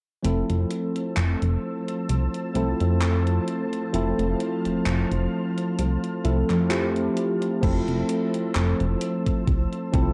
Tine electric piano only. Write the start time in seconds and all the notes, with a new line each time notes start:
0.22 F3 A3 C4 E4 A4
2.54 F3 A3 C4 E4 A4
3.92 F3 A3 C4 E4 A4
6.24 F3 A3 C4 E4 A4
6.69 F3 A3 C4 E4 G4
7.61 F3 A3 C4 E4 A4
9.92 F3 A3 C4 E4 A4